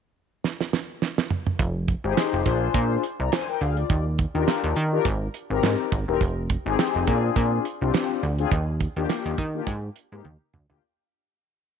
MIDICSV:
0, 0, Header, 1, 4, 480
1, 0, Start_track
1, 0, Tempo, 576923
1, 1325, Time_signature, 4, 2, 24, 8
1, 9812, End_track
2, 0, Start_track
2, 0, Title_t, "Analog polysynth"
2, 0, Program_c, 0, 90
2, 1695, Note_on_c, 0, 63, 88
2, 1698, Note_on_c, 0, 67, 85
2, 1701, Note_on_c, 0, 68, 88
2, 1703, Note_on_c, 0, 72, 91
2, 2034, Note_off_c, 0, 68, 0
2, 2037, Note_off_c, 0, 72, 0
2, 2040, Note_off_c, 0, 63, 0
2, 2040, Note_on_c, 0, 62, 91
2, 2041, Note_off_c, 0, 67, 0
2, 2042, Note_on_c, 0, 65, 86
2, 2044, Note_on_c, 0, 68, 83
2, 2047, Note_on_c, 0, 72, 105
2, 2523, Note_off_c, 0, 62, 0
2, 2524, Note_off_c, 0, 65, 0
2, 2525, Note_off_c, 0, 68, 0
2, 2526, Note_off_c, 0, 72, 0
2, 2660, Note_on_c, 0, 82, 60
2, 2665, Note_on_c, 0, 74, 51
2, 2760, Note_off_c, 0, 82, 0
2, 2761, Note_on_c, 0, 80, 74
2, 2763, Note_off_c, 0, 74, 0
2, 2768, Note_on_c, 0, 72, 65
2, 2891, Note_off_c, 0, 80, 0
2, 2894, Note_off_c, 0, 72, 0
2, 2898, Note_on_c, 0, 79, 72
2, 2903, Note_on_c, 0, 70, 64
2, 2999, Note_off_c, 0, 79, 0
2, 3002, Note_off_c, 0, 70, 0
2, 3003, Note_on_c, 0, 77, 69
2, 3009, Note_on_c, 0, 68, 59
2, 3132, Note_off_c, 0, 77, 0
2, 3135, Note_off_c, 0, 68, 0
2, 3137, Note_on_c, 0, 74, 66
2, 3143, Note_on_c, 0, 65, 50
2, 3366, Note_off_c, 0, 74, 0
2, 3369, Note_off_c, 0, 65, 0
2, 3612, Note_on_c, 0, 62, 96
2, 3616, Note_on_c, 0, 65, 80
2, 3618, Note_on_c, 0, 67, 83
2, 3619, Note_on_c, 0, 70, 89
2, 3959, Note_off_c, 0, 62, 0
2, 3960, Note_off_c, 0, 65, 0
2, 3961, Note_off_c, 0, 67, 0
2, 3962, Note_off_c, 0, 70, 0
2, 4094, Note_on_c, 0, 62, 98
2, 4097, Note_on_c, 0, 65, 86
2, 4100, Note_on_c, 0, 67, 84
2, 4102, Note_on_c, 0, 70, 103
2, 4203, Note_off_c, 0, 62, 0
2, 4204, Note_off_c, 0, 65, 0
2, 4206, Note_off_c, 0, 67, 0
2, 4207, Note_off_c, 0, 70, 0
2, 4576, Note_on_c, 0, 60, 85
2, 4577, Note_on_c, 0, 63, 69
2, 4580, Note_on_c, 0, 67, 75
2, 4583, Note_on_c, 0, 70, 96
2, 4920, Note_off_c, 0, 60, 0
2, 4921, Note_off_c, 0, 63, 0
2, 4923, Note_off_c, 0, 67, 0
2, 4924, Note_off_c, 0, 70, 0
2, 5055, Note_on_c, 0, 60, 91
2, 5059, Note_on_c, 0, 63, 83
2, 5060, Note_on_c, 0, 67, 82
2, 5063, Note_on_c, 0, 70, 95
2, 5163, Note_off_c, 0, 60, 0
2, 5165, Note_off_c, 0, 63, 0
2, 5166, Note_off_c, 0, 67, 0
2, 5167, Note_off_c, 0, 70, 0
2, 5535, Note_on_c, 0, 60, 94
2, 5539, Note_on_c, 0, 63, 86
2, 5540, Note_on_c, 0, 67, 77
2, 5543, Note_on_c, 0, 68, 101
2, 5871, Note_off_c, 0, 60, 0
2, 5877, Note_off_c, 0, 68, 0
2, 5881, Note_on_c, 0, 60, 85
2, 5882, Note_off_c, 0, 63, 0
2, 5882, Note_off_c, 0, 67, 0
2, 5882, Note_on_c, 0, 62, 83
2, 5885, Note_on_c, 0, 65, 77
2, 5887, Note_on_c, 0, 68, 94
2, 6364, Note_off_c, 0, 60, 0
2, 6364, Note_off_c, 0, 62, 0
2, 6365, Note_off_c, 0, 65, 0
2, 6367, Note_off_c, 0, 68, 0
2, 6497, Note_on_c, 0, 60, 80
2, 6500, Note_on_c, 0, 62, 72
2, 6503, Note_on_c, 0, 65, 75
2, 6504, Note_on_c, 0, 67, 84
2, 6841, Note_off_c, 0, 60, 0
2, 6842, Note_off_c, 0, 62, 0
2, 6844, Note_off_c, 0, 65, 0
2, 6845, Note_off_c, 0, 67, 0
2, 6981, Note_on_c, 0, 60, 89
2, 6982, Note_on_c, 0, 62, 79
2, 6985, Note_on_c, 0, 65, 89
2, 6986, Note_on_c, 0, 68, 101
2, 7086, Note_off_c, 0, 60, 0
2, 7087, Note_off_c, 0, 62, 0
2, 7088, Note_off_c, 0, 65, 0
2, 7089, Note_off_c, 0, 68, 0
2, 7460, Note_on_c, 0, 58, 88
2, 7462, Note_on_c, 0, 62, 82
2, 7464, Note_on_c, 0, 65, 74
2, 7466, Note_on_c, 0, 67, 107
2, 7803, Note_off_c, 0, 58, 0
2, 7804, Note_off_c, 0, 62, 0
2, 7805, Note_off_c, 0, 65, 0
2, 7806, Note_off_c, 0, 67, 0
2, 7941, Note_on_c, 0, 58, 97
2, 7942, Note_on_c, 0, 62, 82
2, 7946, Note_on_c, 0, 65, 84
2, 7946, Note_on_c, 0, 67, 103
2, 8046, Note_off_c, 0, 58, 0
2, 8047, Note_off_c, 0, 62, 0
2, 8049, Note_off_c, 0, 65, 0
2, 8049, Note_off_c, 0, 67, 0
2, 8421, Note_on_c, 0, 58, 89
2, 8422, Note_on_c, 0, 60, 73
2, 8425, Note_on_c, 0, 63, 75
2, 8427, Note_on_c, 0, 67, 86
2, 8526, Note_off_c, 0, 58, 0
2, 8527, Note_off_c, 0, 60, 0
2, 8528, Note_off_c, 0, 63, 0
2, 8529, Note_off_c, 0, 67, 0
2, 8900, Note_on_c, 0, 58, 88
2, 8903, Note_on_c, 0, 62, 74
2, 8904, Note_on_c, 0, 65, 89
2, 8906, Note_on_c, 0, 67, 105
2, 9006, Note_off_c, 0, 58, 0
2, 9007, Note_off_c, 0, 62, 0
2, 9008, Note_off_c, 0, 65, 0
2, 9009, Note_off_c, 0, 67, 0
2, 9812, End_track
3, 0, Start_track
3, 0, Title_t, "Analog synth bass"
3, 0, Program_c, 1, 38
3, 1326, Note_on_c, 1, 29, 112
3, 1622, Note_off_c, 1, 29, 0
3, 1700, Note_on_c, 1, 32, 85
3, 1783, Note_off_c, 1, 32, 0
3, 1940, Note_on_c, 1, 29, 96
3, 2024, Note_off_c, 1, 29, 0
3, 2045, Note_on_c, 1, 34, 99
3, 2235, Note_off_c, 1, 34, 0
3, 2283, Note_on_c, 1, 46, 109
3, 2474, Note_off_c, 1, 46, 0
3, 2660, Note_on_c, 1, 36, 85
3, 2744, Note_off_c, 1, 36, 0
3, 3004, Note_on_c, 1, 38, 99
3, 3195, Note_off_c, 1, 38, 0
3, 3245, Note_on_c, 1, 39, 105
3, 3541, Note_off_c, 1, 39, 0
3, 3619, Note_on_c, 1, 39, 85
3, 3703, Note_off_c, 1, 39, 0
3, 3858, Note_on_c, 1, 39, 94
3, 3942, Note_off_c, 1, 39, 0
3, 3964, Note_on_c, 1, 51, 115
3, 4155, Note_off_c, 1, 51, 0
3, 4204, Note_on_c, 1, 32, 106
3, 4394, Note_off_c, 1, 32, 0
3, 4579, Note_on_c, 1, 32, 89
3, 4663, Note_off_c, 1, 32, 0
3, 4685, Note_on_c, 1, 44, 99
3, 4792, Note_off_c, 1, 44, 0
3, 4927, Note_on_c, 1, 32, 86
3, 5033, Note_off_c, 1, 32, 0
3, 5061, Note_on_c, 1, 28, 90
3, 5144, Note_off_c, 1, 28, 0
3, 5166, Note_on_c, 1, 29, 107
3, 5462, Note_off_c, 1, 29, 0
3, 5542, Note_on_c, 1, 32, 91
3, 5625, Note_off_c, 1, 32, 0
3, 5784, Note_on_c, 1, 29, 95
3, 5866, Note_off_c, 1, 29, 0
3, 5887, Note_on_c, 1, 46, 100
3, 6076, Note_off_c, 1, 46, 0
3, 6125, Note_on_c, 1, 46, 113
3, 6315, Note_off_c, 1, 46, 0
3, 6502, Note_on_c, 1, 36, 90
3, 6585, Note_off_c, 1, 36, 0
3, 6847, Note_on_c, 1, 38, 91
3, 7036, Note_off_c, 1, 38, 0
3, 7084, Note_on_c, 1, 39, 105
3, 7381, Note_off_c, 1, 39, 0
3, 7459, Note_on_c, 1, 39, 84
3, 7543, Note_off_c, 1, 39, 0
3, 7700, Note_on_c, 1, 39, 94
3, 7783, Note_off_c, 1, 39, 0
3, 7807, Note_on_c, 1, 51, 110
3, 7996, Note_off_c, 1, 51, 0
3, 8044, Note_on_c, 1, 44, 123
3, 8235, Note_off_c, 1, 44, 0
3, 8421, Note_on_c, 1, 44, 90
3, 8504, Note_off_c, 1, 44, 0
3, 8526, Note_on_c, 1, 39, 96
3, 8632, Note_off_c, 1, 39, 0
3, 8768, Note_on_c, 1, 38, 87
3, 8873, Note_off_c, 1, 38, 0
3, 8900, Note_on_c, 1, 38, 96
3, 8984, Note_off_c, 1, 38, 0
3, 9812, End_track
4, 0, Start_track
4, 0, Title_t, "Drums"
4, 369, Note_on_c, 9, 38, 69
4, 453, Note_off_c, 9, 38, 0
4, 503, Note_on_c, 9, 38, 69
4, 586, Note_off_c, 9, 38, 0
4, 610, Note_on_c, 9, 38, 83
4, 693, Note_off_c, 9, 38, 0
4, 849, Note_on_c, 9, 38, 84
4, 932, Note_off_c, 9, 38, 0
4, 983, Note_on_c, 9, 38, 97
4, 1066, Note_off_c, 9, 38, 0
4, 1086, Note_on_c, 9, 45, 97
4, 1169, Note_off_c, 9, 45, 0
4, 1219, Note_on_c, 9, 45, 103
4, 1302, Note_off_c, 9, 45, 0
4, 1325, Note_on_c, 9, 36, 101
4, 1326, Note_on_c, 9, 42, 83
4, 1408, Note_off_c, 9, 36, 0
4, 1409, Note_off_c, 9, 42, 0
4, 1564, Note_on_c, 9, 42, 66
4, 1567, Note_on_c, 9, 36, 79
4, 1648, Note_off_c, 9, 42, 0
4, 1650, Note_off_c, 9, 36, 0
4, 1808, Note_on_c, 9, 38, 105
4, 1808, Note_on_c, 9, 42, 100
4, 1815, Note_on_c, 9, 39, 87
4, 1891, Note_off_c, 9, 38, 0
4, 1891, Note_off_c, 9, 42, 0
4, 1899, Note_off_c, 9, 39, 0
4, 2041, Note_on_c, 9, 42, 78
4, 2045, Note_on_c, 9, 36, 92
4, 2125, Note_off_c, 9, 42, 0
4, 2128, Note_off_c, 9, 36, 0
4, 2281, Note_on_c, 9, 42, 89
4, 2283, Note_on_c, 9, 36, 111
4, 2365, Note_off_c, 9, 42, 0
4, 2366, Note_off_c, 9, 36, 0
4, 2523, Note_on_c, 9, 42, 83
4, 2606, Note_off_c, 9, 42, 0
4, 2763, Note_on_c, 9, 42, 93
4, 2768, Note_on_c, 9, 38, 113
4, 2776, Note_on_c, 9, 39, 89
4, 2846, Note_off_c, 9, 42, 0
4, 2851, Note_off_c, 9, 38, 0
4, 2859, Note_off_c, 9, 39, 0
4, 3007, Note_on_c, 9, 42, 60
4, 3090, Note_off_c, 9, 42, 0
4, 3136, Note_on_c, 9, 42, 49
4, 3219, Note_off_c, 9, 42, 0
4, 3244, Note_on_c, 9, 36, 104
4, 3244, Note_on_c, 9, 42, 80
4, 3327, Note_off_c, 9, 36, 0
4, 3327, Note_off_c, 9, 42, 0
4, 3482, Note_on_c, 9, 42, 67
4, 3485, Note_on_c, 9, 36, 93
4, 3566, Note_off_c, 9, 42, 0
4, 3568, Note_off_c, 9, 36, 0
4, 3725, Note_on_c, 9, 38, 105
4, 3725, Note_on_c, 9, 42, 96
4, 3733, Note_on_c, 9, 39, 92
4, 3809, Note_off_c, 9, 38, 0
4, 3809, Note_off_c, 9, 42, 0
4, 3816, Note_off_c, 9, 39, 0
4, 3960, Note_on_c, 9, 42, 70
4, 4043, Note_off_c, 9, 42, 0
4, 4201, Note_on_c, 9, 42, 92
4, 4203, Note_on_c, 9, 36, 102
4, 4284, Note_off_c, 9, 42, 0
4, 4286, Note_off_c, 9, 36, 0
4, 4443, Note_on_c, 9, 42, 89
4, 4526, Note_off_c, 9, 42, 0
4, 4683, Note_on_c, 9, 42, 92
4, 4688, Note_on_c, 9, 38, 116
4, 4696, Note_on_c, 9, 39, 96
4, 4766, Note_off_c, 9, 42, 0
4, 4771, Note_off_c, 9, 38, 0
4, 4779, Note_off_c, 9, 39, 0
4, 4926, Note_on_c, 9, 36, 93
4, 4928, Note_on_c, 9, 42, 59
4, 5010, Note_off_c, 9, 36, 0
4, 5011, Note_off_c, 9, 42, 0
4, 5165, Note_on_c, 9, 36, 94
4, 5165, Note_on_c, 9, 42, 84
4, 5248, Note_off_c, 9, 36, 0
4, 5249, Note_off_c, 9, 42, 0
4, 5404, Note_on_c, 9, 42, 75
4, 5407, Note_on_c, 9, 36, 93
4, 5487, Note_off_c, 9, 42, 0
4, 5490, Note_off_c, 9, 36, 0
4, 5649, Note_on_c, 9, 38, 103
4, 5649, Note_on_c, 9, 42, 91
4, 5656, Note_on_c, 9, 39, 85
4, 5732, Note_off_c, 9, 38, 0
4, 5732, Note_off_c, 9, 42, 0
4, 5740, Note_off_c, 9, 39, 0
4, 5883, Note_on_c, 9, 42, 73
4, 5886, Note_on_c, 9, 36, 96
4, 5966, Note_off_c, 9, 42, 0
4, 5969, Note_off_c, 9, 36, 0
4, 6124, Note_on_c, 9, 42, 96
4, 6125, Note_on_c, 9, 36, 101
4, 6207, Note_off_c, 9, 42, 0
4, 6208, Note_off_c, 9, 36, 0
4, 6366, Note_on_c, 9, 42, 87
4, 6449, Note_off_c, 9, 42, 0
4, 6604, Note_on_c, 9, 42, 93
4, 6609, Note_on_c, 9, 38, 115
4, 6617, Note_on_c, 9, 39, 89
4, 6687, Note_off_c, 9, 42, 0
4, 6692, Note_off_c, 9, 38, 0
4, 6700, Note_off_c, 9, 39, 0
4, 6848, Note_on_c, 9, 42, 61
4, 6931, Note_off_c, 9, 42, 0
4, 6976, Note_on_c, 9, 42, 48
4, 7059, Note_off_c, 9, 42, 0
4, 7085, Note_on_c, 9, 36, 96
4, 7085, Note_on_c, 9, 42, 78
4, 7168, Note_off_c, 9, 36, 0
4, 7168, Note_off_c, 9, 42, 0
4, 7323, Note_on_c, 9, 42, 74
4, 7326, Note_on_c, 9, 36, 85
4, 7406, Note_off_c, 9, 42, 0
4, 7410, Note_off_c, 9, 36, 0
4, 7567, Note_on_c, 9, 38, 108
4, 7567, Note_on_c, 9, 42, 98
4, 7575, Note_on_c, 9, 39, 80
4, 7650, Note_off_c, 9, 38, 0
4, 7650, Note_off_c, 9, 42, 0
4, 7658, Note_off_c, 9, 39, 0
4, 7802, Note_on_c, 9, 42, 69
4, 7806, Note_on_c, 9, 36, 94
4, 7885, Note_off_c, 9, 42, 0
4, 7889, Note_off_c, 9, 36, 0
4, 8043, Note_on_c, 9, 42, 96
4, 8044, Note_on_c, 9, 36, 107
4, 8126, Note_off_c, 9, 42, 0
4, 8127, Note_off_c, 9, 36, 0
4, 8284, Note_on_c, 9, 42, 88
4, 8368, Note_off_c, 9, 42, 0
4, 8526, Note_on_c, 9, 48, 55
4, 8609, Note_off_c, 9, 48, 0
4, 8766, Note_on_c, 9, 45, 83
4, 8849, Note_off_c, 9, 45, 0
4, 8900, Note_on_c, 9, 43, 89
4, 8983, Note_off_c, 9, 43, 0
4, 9812, End_track
0, 0, End_of_file